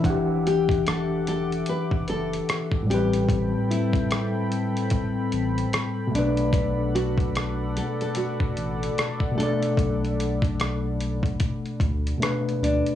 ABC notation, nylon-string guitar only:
X:1
M:4/4
L:1/16
Q:"Swing 16ths" 1/4=74
K:Bphr
V:1 name="Nylon-string guitar"
E2 G2 A2 A2 B2 A4 G2- | G2 E12 D2- | D2 F4 A A F6 A2- | A12- A2 D2 |]